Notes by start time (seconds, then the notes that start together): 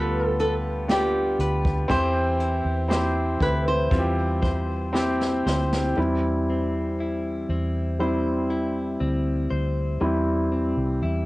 Already playing: D2 D3 G3 B3 F4 G4 A4 B4
0.39 A4 B4, closed hi-hat
0.88 B3 D4 F4 G4, snare, closed hi-hat
1.39 D2 B4, closed hi-hat
1.65 kick
1.88 E2 E3 C4 E4 G4 C5, kick, closed hi-hat
2.40 E4, closed hi-hat
2.65 E2
2.88 C4 E4 G4 C5, snare, closed hi-hat
3.40 D2 E4 B4, kick, closed hi-hat
3.68 C5
3.91 E2 G3 C4 E4 F4, kick, closed hi-hat
3.99 G4
4.42 C5, kick, closed hi-hat
4.93 C4 E4 G4, snare
5.21 snare
5.46 D2 C5, snare
5.73 snare
5.97 E2 E3 G3 C4 E4
6.50 C4
7.00 E4
7.49 E2 C4
8.00 G3 C4 E4 C5
8.50 E4
9.00 D2 C4
9.51 D2 C5
10.01 E2 E3 G3 C4 E4
10.52 C4
10.77 C2
11.02 E2 E4